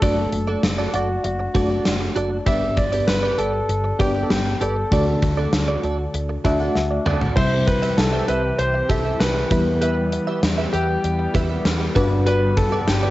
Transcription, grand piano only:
0.00 0.97 A4 medium
0.94 1.22 F#4 medium
1.24 2.12 F#4 medium
2.46 2.78 E5 loud
2.77 3.09 D5 medium
3.08 3.39 B4 medium
3.38 3.96 A4 medium
3.99 4.22 G4 medium
4.23 4.30 A4 medium
4.30 4.62 G4 medium
4.60 6.71 A4 medium
7.36 7.68 C5 loud
7.67 7.99 B4 loud
7.97 8.26 A4 medium
8.28 8.60 B4 medium
8.59 8.87 C5 loud
8.89 9.21 A4 medium
9.20 9.80 B4 medium
9.81 10.39 B4 medium
10.73 11.30 G4 loud
12.26 12.58 B4 loud
12.57 12.78 A4 medium
12.80 12.87 A4 medium
12.87 13.11 G4 medium

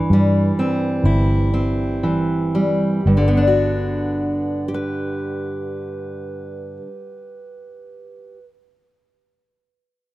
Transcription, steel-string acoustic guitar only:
0.00 3.00 G2 medium
0.00 2.02 E3 medium
0.13 2.54 G3 soft
0.59 1.52 C4 soft
1.05 3.06 E4 soft
1.54 3.00 C4 soft
2.03 3.00 E3 soft
2.55 3.27 G3 soft
3.07 6.77 G2 soft
3.17 6.87 D3 soft
3.28 4.68 B3 soft
3.37 4.74 D4 soft
3.47 7.17 F#4 soft
4.68 8.38 G4 soft
4.74 8.44 B4 soft

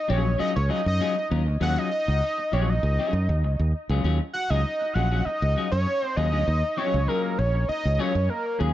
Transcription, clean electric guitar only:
0.08 0.30 F#3 medium
0.08 0.24 C#4 medium
0.08 0.23 F4 medium
0.08 0.23 G#4 medium
0.24 muted clean electric guitar stroke soft
0.38 0.53 F#3 medium
0.38 0.53 C#4 medium
0.38 0.54 F4 medium
0.38 0.54 G#4 medium
0.55 muted clean electric guitar stroke soft
0.69 0.80 F#3 medium
0.69 0.81 C#4 medium
0.69 0.81 F4 medium
0.69 0.81 G#4 medium
0.86 muted clean electric guitar stroke medium
1.00 1.14 F#3 medium
1.00 1.15 C#4 loud
1.00 1.15 F4 medium
1.00 1.14 G#4 loud
1.16 muted clean electric guitar stroke medium
1.30 1.42 F#3 medium
1.30 1.42 C#4 medium
1.30 1.42 F4 medium
1.30 1.42 A#4 medium
1.46 muted clean electric guitar stroke soft
1.60 1.89 F#3 medium
1.60 1.89 C#4 loud
1.60 1.90 F4 loud
1.60 1.90 G#4 loud
2.08 muted clean electric guitar stroke soft
2.22 muted clean electric guitar stroke soft
2.38 muted clean electric guitar stroke soft
2.52 2.73 F#3 medium
2.52 2.68 C#4 medium
2.52 2.67 F4 medium
2.52 2.67 G#4 medium
2.68 muted clean electric guitar stroke medium
2.82 muted clean electric guitar stroke soft
2.99 3.12 F#3 medium
2.99 3.13 C#4 medium
2.99 3.13 F4 medium
2.99 3.13 G#4 medium
3.13 muted clean electric guitar stroke soft
3.29 muted clean electric guitar stroke medium
3.44 muted clean electric guitar stroke soft
3.60 muted clean electric guitar stroke soft
3.90 4.03 F#3 medium
3.90 4.03 C#4 medium
3.90 4.03 F4 medium
3.90 4.02 G#4 medium
4.04 4.18 F#3 medium
4.04 4.18 C#4 medium
4.04 4.19 F4 medium
4.04 4.19 G#4 medium
4.20 muted clean electric guitar stroke soft
4.35 muted clean electric guitar stroke soft
4.50 4.61 F#3 medium
4.50 4.61 C#4 medium
4.50 4.60 F4 medium
4.50 4.60 G#4 medium
4.65 muted clean electric guitar stroke soft
4.81 muted clean electric guitar stroke soft
4.95 5.06 F#3 medium
4.95 5.06 C#4 medium
4.95 5.06 F4 medium
4.95 5.07 G#4 medium
5.11 5.22 F#3 medium
5.11 5.21 C#4 medium
5.11 5.21 F4 medium
5.11 5.21 G#4 medium
5.26 muted clean electric guitar stroke soft
5.56 5.67 F#3 medium
5.56 5.67 C#4 medium
5.56 5.67 F4 medium
5.56 5.68 G#4 medium
5.72 muted clean electric guitar stroke soft
5.86 muted clean electric guitar stroke soft
6.02 muted clean electric guitar stroke soft
6.17 6.28 F#3 medium
6.17 6.28 C#4 medium
6.17 6.28 F4 medium
6.17 6.28 G#4 medium
6.32 6.43 F#3 medium
6.32 6.42 C#4 medium
6.32 6.42 F4 medium
6.32 6.42 G#4 medium
6.77 6.98 F#3 medium
6.77 6.98 C#4 medium
6.77 6.98 F4 medium
6.77 6.98 G#4 medium
7.08 7.36 F#3 medium
7.08 7.36 C#4 medium
7.08 7.36 F4 medium
7.08 7.36 G#4 medium
7.39 muted clean electric guitar stroke soft
7.55 muted clean electric guitar stroke soft
7.69 muted clean electric guitar stroke soft
7.85 muted clean electric guitar stroke soft
7.99 8.13 F#3 loud
7.99 8.13 C#4 loud
7.99 8.13 F4 loud
7.99 8.13 G#4 loud
8.15 muted clean electric guitar stroke medium
8.28 muted clean electric guitar stroke soft
8.58 8.70 F#3 medium
8.58 8.70 C#4 medium
8.58 8.70 F4 medium
8.58 8.70 G#4 medium

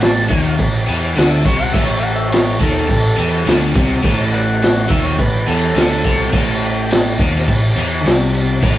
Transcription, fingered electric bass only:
0.00 0.27 A1 medium
0.31 0.57 D#2 medium
0.59 0.86 A1 medium
0.88 1.15 E2 medium
1.17 1.44 D2 medium
1.45 1.72 C2 medium
1.75 2.57 A1 medium
2.61 2.87 D#2 medium
2.90 3.16 A1 medium
3.17 3.44 E2 medium
3.47 3.73 D2 loud
3.75 4.02 C2 medium
4.04 4.86 A1 medium
4.90 5.17 D#2 medium
5.19 5.46 A1 medium
5.47 5.74 E2 medium
5.75 6.02 D2 medium
6.05 6.32 C2 medium
6.34 7.16 A1 medium
7.19 7.46 D#2 loud
7.48 7.75 A1 medium
7.76 8.03 E2 medium
8.04 8.58 C2 medium
8.63 8.78 A1 medium

